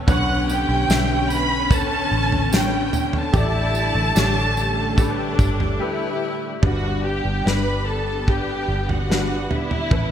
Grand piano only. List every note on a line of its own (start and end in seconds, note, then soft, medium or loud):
0.07 1.26 B2 medium
0.07 0.84 D3 loud
0.07 0.85 B4 medium
0.07 0.85 C#5 loud
0.88 1.66 D3 medium
0.88 1.66 B4 medium
0.88 1.67 E5 medium
1.70 2.48 D3 medium
1.70 2.48 B4 medium
1.70 2.49 C#5 medium
2.52 3.29 D3 medium
2.52 3.30 B4 medium
2.52 3.30 C#5 medium
3.33 4.52 A2 medium
3.33 4.11 G4 medium
3.33 4.11 A4 medium
3.33 4.12 D5 loud
4.15 4.93 G4 medium
4.15 4.94 A4 medium
4.15 4.94 C#5 medium
4.97 5.76 G4 medium
4.97 5.76 A4 medium
4.97 5.76 B4 medium
5.79 6.59 G4 medium
5.79 6.59 A4 medium
5.79 6.59 B4 medium
6.62 7.83 G2 medium
6.62 7.41 G3 medium
6.62 7.41 D4 medium
6.62 7.42 B4 medium
7.45 8.24 D4 medium
7.45 8.24 G4 medium
7.45 8.24 B4 medium
8.27 9.05 D4 medium
8.27 9.06 G4 medium
8.27 9.06 B4 medium
9.09 9.87 G3 medium
9.09 9.87 D4 medium
9.09 9.87 B4 medium
9.90 10.11 A2 medium
9.90 10.11 C#4 medium
9.90 10.11 A4 medium
9.90 10.11 B4 medium